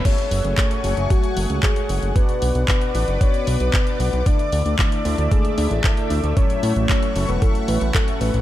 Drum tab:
CC |x---------------|----------------|----------------|----------------|
HH |xxoxxxoxxxoxxxox|xxoxxxoxxxoxxxox|xxoxxxoxxxoxxxox|xxoxxxoxxxoxxxox|
CP |----x-------x---|----x-------x---|----x-------x---|----x-------x---|
BD |o---o---o---o---|o---o---o---o---|o---o---o---o---|o---o---o---o---|